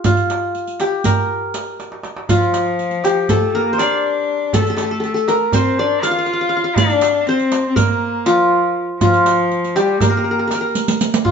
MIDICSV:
0, 0, Header, 1, 5, 480
1, 0, Start_track
1, 0, Tempo, 497925
1, 48, Time_signature, 9, 3, 24, 8
1, 10906, End_track
2, 0, Start_track
2, 0, Title_t, "Qanun"
2, 0, Program_c, 0, 107
2, 54, Note_on_c, 0, 65, 79
2, 777, Note_on_c, 0, 67, 71
2, 1012, Note_on_c, 0, 70, 73
2, 1350, Note_off_c, 0, 65, 0
2, 1985, Note_off_c, 0, 67, 0
2, 2103, Note_off_c, 0, 70, 0
2, 2213, Note_on_c, 0, 65, 81
2, 2935, Note_on_c, 0, 67, 78
2, 3177, Note_on_c, 0, 69, 84
2, 3420, Note_on_c, 0, 70, 78
2, 3478, Note_off_c, 0, 69, 0
2, 3510, Note_off_c, 0, 65, 0
2, 3595, Note_on_c, 0, 72, 69
2, 3657, Note_on_c, 0, 74, 94
2, 4142, Note_off_c, 0, 67, 0
2, 4378, Note_on_c, 0, 69, 87
2, 4436, Note_off_c, 0, 70, 0
2, 4447, Note_off_c, 0, 69, 0
2, 4451, Note_on_c, 0, 69, 55
2, 4525, Note_off_c, 0, 69, 0
2, 4529, Note_on_c, 0, 69, 65
2, 4589, Note_off_c, 0, 69, 0
2, 4593, Note_on_c, 0, 69, 57
2, 4611, Note_off_c, 0, 72, 0
2, 4612, Note_off_c, 0, 74, 0
2, 4650, Note_off_c, 0, 69, 0
2, 4653, Note_on_c, 0, 69, 62
2, 4730, Note_off_c, 0, 69, 0
2, 4734, Note_on_c, 0, 69, 55
2, 4815, Note_off_c, 0, 69, 0
2, 4819, Note_on_c, 0, 69, 60
2, 4865, Note_off_c, 0, 69, 0
2, 4869, Note_on_c, 0, 69, 51
2, 4954, Note_off_c, 0, 69, 0
2, 4957, Note_on_c, 0, 69, 65
2, 5093, Note_on_c, 0, 70, 85
2, 5151, Note_off_c, 0, 69, 0
2, 5342, Note_on_c, 0, 72, 92
2, 5584, Note_on_c, 0, 74, 93
2, 5813, Note_on_c, 0, 77, 99
2, 5888, Note_off_c, 0, 77, 0
2, 5892, Note_on_c, 0, 77, 76
2, 5959, Note_off_c, 0, 77, 0
2, 5963, Note_on_c, 0, 77, 73
2, 6033, Note_off_c, 0, 77, 0
2, 6037, Note_on_c, 0, 77, 61
2, 6102, Note_off_c, 0, 77, 0
2, 6106, Note_on_c, 0, 77, 67
2, 6176, Note_off_c, 0, 77, 0
2, 6180, Note_on_c, 0, 77, 60
2, 6184, Note_off_c, 0, 70, 0
2, 6255, Note_off_c, 0, 77, 0
2, 6258, Note_on_c, 0, 77, 75
2, 6326, Note_off_c, 0, 77, 0
2, 6330, Note_on_c, 0, 77, 57
2, 6358, Note_off_c, 0, 72, 0
2, 6398, Note_off_c, 0, 77, 0
2, 6402, Note_on_c, 0, 77, 69
2, 6531, Note_off_c, 0, 74, 0
2, 6535, Note_on_c, 0, 74, 97
2, 7024, Note_on_c, 0, 72, 86
2, 7257, Note_off_c, 0, 77, 0
2, 7480, Note_on_c, 0, 70, 91
2, 7490, Note_off_c, 0, 74, 0
2, 7964, Note_on_c, 0, 65, 90
2, 8040, Note_off_c, 0, 72, 0
2, 8571, Note_off_c, 0, 70, 0
2, 8684, Note_off_c, 0, 65, 0
2, 8688, Note_on_c, 0, 65, 83
2, 9407, Note_on_c, 0, 67, 83
2, 9653, Note_on_c, 0, 70, 74
2, 9729, Note_off_c, 0, 70, 0
2, 9733, Note_on_c, 0, 70, 58
2, 9801, Note_off_c, 0, 70, 0
2, 9805, Note_on_c, 0, 70, 51
2, 9868, Note_off_c, 0, 70, 0
2, 9872, Note_on_c, 0, 70, 48
2, 9935, Note_off_c, 0, 70, 0
2, 9938, Note_on_c, 0, 70, 52
2, 9984, Note_off_c, 0, 65, 0
2, 10015, Note_off_c, 0, 70, 0
2, 10019, Note_on_c, 0, 70, 47
2, 10094, Note_off_c, 0, 70, 0
2, 10097, Note_on_c, 0, 70, 52
2, 10163, Note_off_c, 0, 70, 0
2, 10167, Note_on_c, 0, 70, 51
2, 10222, Note_off_c, 0, 70, 0
2, 10226, Note_on_c, 0, 70, 64
2, 10615, Note_off_c, 0, 67, 0
2, 10842, Note_on_c, 0, 65, 85
2, 10906, Note_off_c, 0, 65, 0
2, 10906, Note_off_c, 0, 70, 0
2, 10906, End_track
3, 0, Start_track
3, 0, Title_t, "Cello"
3, 0, Program_c, 1, 42
3, 2212, Note_on_c, 1, 53, 81
3, 3169, Note_on_c, 1, 57, 71
3, 3183, Note_off_c, 1, 53, 0
3, 3416, Note_on_c, 1, 58, 76
3, 3431, Note_off_c, 1, 57, 0
3, 3662, Note_on_c, 1, 62, 77
3, 3677, Note_off_c, 1, 58, 0
3, 4372, Note_on_c, 1, 57, 85
3, 4386, Note_off_c, 1, 62, 0
3, 5325, Note_off_c, 1, 57, 0
3, 5330, Note_on_c, 1, 60, 85
3, 5574, Note_on_c, 1, 62, 84
3, 5588, Note_off_c, 1, 60, 0
3, 5809, Note_on_c, 1, 65, 96
3, 5823, Note_off_c, 1, 62, 0
3, 6514, Note_on_c, 1, 62, 96
3, 6529, Note_off_c, 1, 65, 0
3, 6943, Note_off_c, 1, 62, 0
3, 6943, Note_on_c, 1, 62, 61
3, 7000, Note_on_c, 1, 60, 84
3, 7015, Note_off_c, 1, 62, 0
3, 7400, Note_off_c, 1, 60, 0
3, 7406, Note_on_c, 1, 60, 59
3, 7482, Note_on_c, 1, 58, 78
3, 7496, Note_off_c, 1, 60, 0
3, 7960, Note_on_c, 1, 53, 77
3, 7975, Note_off_c, 1, 58, 0
3, 8502, Note_off_c, 1, 53, 0
3, 8672, Note_on_c, 1, 53, 87
3, 9411, Note_on_c, 1, 55, 75
3, 9425, Note_off_c, 1, 53, 0
3, 9640, Note_on_c, 1, 58, 67
3, 9655, Note_off_c, 1, 55, 0
3, 10362, Note_off_c, 1, 58, 0
3, 10906, End_track
4, 0, Start_track
4, 0, Title_t, "Darbuka"
4, 43, Note_on_c, 9, 64, 100
4, 140, Note_off_c, 9, 64, 0
4, 170, Note_on_c, 9, 62, 23
4, 266, Note_off_c, 9, 62, 0
4, 298, Note_on_c, 9, 63, 62
4, 395, Note_off_c, 9, 63, 0
4, 772, Note_on_c, 9, 63, 63
4, 869, Note_off_c, 9, 63, 0
4, 1017, Note_on_c, 9, 64, 92
4, 1113, Note_off_c, 9, 64, 0
4, 1491, Note_on_c, 9, 63, 62
4, 1588, Note_off_c, 9, 63, 0
4, 1733, Note_on_c, 9, 63, 53
4, 1829, Note_off_c, 9, 63, 0
4, 1850, Note_on_c, 9, 62, 58
4, 1947, Note_off_c, 9, 62, 0
4, 1961, Note_on_c, 9, 63, 62
4, 2058, Note_off_c, 9, 63, 0
4, 2087, Note_on_c, 9, 62, 82
4, 2184, Note_off_c, 9, 62, 0
4, 2208, Note_on_c, 9, 64, 103
4, 2304, Note_off_c, 9, 64, 0
4, 2447, Note_on_c, 9, 63, 59
4, 2543, Note_off_c, 9, 63, 0
4, 2929, Note_on_c, 9, 63, 62
4, 3025, Note_off_c, 9, 63, 0
4, 3172, Note_on_c, 9, 64, 85
4, 3268, Note_off_c, 9, 64, 0
4, 3649, Note_on_c, 9, 63, 64
4, 3745, Note_off_c, 9, 63, 0
4, 3889, Note_on_c, 9, 62, 24
4, 3985, Note_off_c, 9, 62, 0
4, 4370, Note_on_c, 9, 64, 90
4, 4466, Note_off_c, 9, 64, 0
4, 4489, Note_on_c, 9, 62, 24
4, 4585, Note_off_c, 9, 62, 0
4, 4602, Note_on_c, 9, 63, 63
4, 4699, Note_off_c, 9, 63, 0
4, 5088, Note_on_c, 9, 63, 67
4, 5184, Note_off_c, 9, 63, 0
4, 5326, Note_on_c, 9, 64, 92
4, 5423, Note_off_c, 9, 64, 0
4, 5807, Note_on_c, 9, 63, 68
4, 5904, Note_off_c, 9, 63, 0
4, 6050, Note_on_c, 9, 62, 26
4, 6146, Note_off_c, 9, 62, 0
4, 6518, Note_on_c, 9, 64, 93
4, 6615, Note_off_c, 9, 64, 0
4, 6642, Note_on_c, 9, 62, 26
4, 6739, Note_off_c, 9, 62, 0
4, 6768, Note_on_c, 9, 63, 74
4, 6864, Note_off_c, 9, 63, 0
4, 7250, Note_on_c, 9, 63, 74
4, 7346, Note_off_c, 9, 63, 0
4, 7484, Note_on_c, 9, 64, 93
4, 7581, Note_off_c, 9, 64, 0
4, 7965, Note_on_c, 9, 63, 69
4, 8062, Note_off_c, 9, 63, 0
4, 8208, Note_on_c, 9, 62, 26
4, 8305, Note_off_c, 9, 62, 0
4, 8686, Note_on_c, 9, 64, 89
4, 8782, Note_off_c, 9, 64, 0
4, 8809, Note_on_c, 9, 62, 25
4, 8905, Note_off_c, 9, 62, 0
4, 8927, Note_on_c, 9, 63, 68
4, 9023, Note_off_c, 9, 63, 0
4, 9170, Note_on_c, 9, 62, 23
4, 9266, Note_off_c, 9, 62, 0
4, 9287, Note_on_c, 9, 62, 25
4, 9383, Note_off_c, 9, 62, 0
4, 9406, Note_on_c, 9, 63, 65
4, 9503, Note_off_c, 9, 63, 0
4, 9645, Note_on_c, 9, 64, 99
4, 9741, Note_off_c, 9, 64, 0
4, 9888, Note_on_c, 9, 62, 25
4, 9984, Note_off_c, 9, 62, 0
4, 10129, Note_on_c, 9, 63, 63
4, 10226, Note_off_c, 9, 63, 0
4, 10375, Note_on_c, 9, 62, 26
4, 10471, Note_off_c, 9, 62, 0
4, 10847, Note_on_c, 9, 64, 85
4, 10906, Note_off_c, 9, 64, 0
4, 10906, End_track
5, 0, Start_track
5, 0, Title_t, "Riq"
5, 41, Note_on_c, 9, 54, 55
5, 138, Note_off_c, 9, 54, 0
5, 165, Note_on_c, 9, 54, 18
5, 261, Note_off_c, 9, 54, 0
5, 288, Note_on_c, 9, 54, 42
5, 384, Note_off_c, 9, 54, 0
5, 527, Note_on_c, 9, 54, 18
5, 624, Note_off_c, 9, 54, 0
5, 650, Note_on_c, 9, 54, 18
5, 746, Note_off_c, 9, 54, 0
5, 768, Note_on_c, 9, 54, 44
5, 864, Note_off_c, 9, 54, 0
5, 1005, Note_on_c, 9, 54, 56
5, 1101, Note_off_c, 9, 54, 0
5, 1486, Note_on_c, 9, 54, 48
5, 1582, Note_off_c, 9, 54, 0
5, 1732, Note_on_c, 9, 54, 16
5, 1828, Note_off_c, 9, 54, 0
5, 1969, Note_on_c, 9, 54, 16
5, 2066, Note_off_c, 9, 54, 0
5, 2211, Note_on_c, 9, 54, 63
5, 2308, Note_off_c, 9, 54, 0
5, 2334, Note_on_c, 9, 54, 16
5, 2430, Note_off_c, 9, 54, 0
5, 2448, Note_on_c, 9, 54, 44
5, 2544, Note_off_c, 9, 54, 0
5, 2690, Note_on_c, 9, 54, 15
5, 2786, Note_off_c, 9, 54, 0
5, 2805, Note_on_c, 9, 54, 17
5, 2901, Note_off_c, 9, 54, 0
5, 2937, Note_on_c, 9, 54, 44
5, 3034, Note_off_c, 9, 54, 0
5, 3173, Note_on_c, 9, 54, 58
5, 3270, Note_off_c, 9, 54, 0
5, 3655, Note_on_c, 9, 54, 47
5, 3752, Note_off_c, 9, 54, 0
5, 4375, Note_on_c, 9, 54, 57
5, 4471, Note_off_c, 9, 54, 0
5, 4498, Note_on_c, 9, 54, 19
5, 4594, Note_off_c, 9, 54, 0
5, 4609, Note_on_c, 9, 54, 44
5, 4705, Note_off_c, 9, 54, 0
5, 4854, Note_on_c, 9, 54, 19
5, 4951, Note_off_c, 9, 54, 0
5, 4977, Note_on_c, 9, 54, 18
5, 5074, Note_off_c, 9, 54, 0
5, 5097, Note_on_c, 9, 54, 47
5, 5193, Note_off_c, 9, 54, 0
5, 5332, Note_on_c, 9, 54, 59
5, 5428, Note_off_c, 9, 54, 0
5, 5820, Note_on_c, 9, 54, 52
5, 5916, Note_off_c, 9, 54, 0
5, 6531, Note_on_c, 9, 54, 66
5, 6627, Note_off_c, 9, 54, 0
5, 6647, Note_on_c, 9, 54, 19
5, 6744, Note_off_c, 9, 54, 0
5, 6761, Note_on_c, 9, 54, 49
5, 6857, Note_off_c, 9, 54, 0
5, 7006, Note_on_c, 9, 54, 16
5, 7102, Note_off_c, 9, 54, 0
5, 7128, Note_on_c, 9, 54, 17
5, 7224, Note_off_c, 9, 54, 0
5, 7246, Note_on_c, 9, 54, 53
5, 7342, Note_off_c, 9, 54, 0
5, 7489, Note_on_c, 9, 54, 58
5, 7585, Note_off_c, 9, 54, 0
5, 7964, Note_on_c, 9, 54, 46
5, 8060, Note_off_c, 9, 54, 0
5, 8687, Note_on_c, 9, 54, 59
5, 8784, Note_off_c, 9, 54, 0
5, 8808, Note_on_c, 9, 54, 19
5, 8905, Note_off_c, 9, 54, 0
5, 8927, Note_on_c, 9, 54, 47
5, 9023, Note_off_c, 9, 54, 0
5, 9172, Note_on_c, 9, 54, 18
5, 9268, Note_off_c, 9, 54, 0
5, 9297, Note_on_c, 9, 54, 18
5, 9394, Note_off_c, 9, 54, 0
5, 9413, Note_on_c, 9, 54, 48
5, 9510, Note_off_c, 9, 54, 0
5, 9654, Note_on_c, 9, 54, 66
5, 9751, Note_off_c, 9, 54, 0
5, 10134, Note_on_c, 9, 54, 49
5, 10230, Note_off_c, 9, 54, 0
5, 10366, Note_on_c, 9, 54, 53
5, 10462, Note_off_c, 9, 54, 0
5, 10490, Note_on_c, 9, 54, 71
5, 10586, Note_off_c, 9, 54, 0
5, 10613, Note_on_c, 9, 54, 73
5, 10710, Note_off_c, 9, 54, 0
5, 10737, Note_on_c, 9, 54, 86
5, 10834, Note_off_c, 9, 54, 0
5, 10906, End_track
0, 0, End_of_file